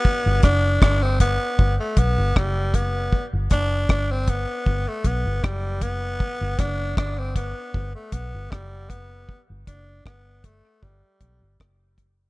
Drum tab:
HH |-x-x-x-x|-x-x-x-x|-x-x-x-x|-x-x-x-x|
SD |-rr---r-|-rr---r-|-rr---r-|--r---r-|
BD |oooooooo|oooooooo|oooooooo|oooooooo|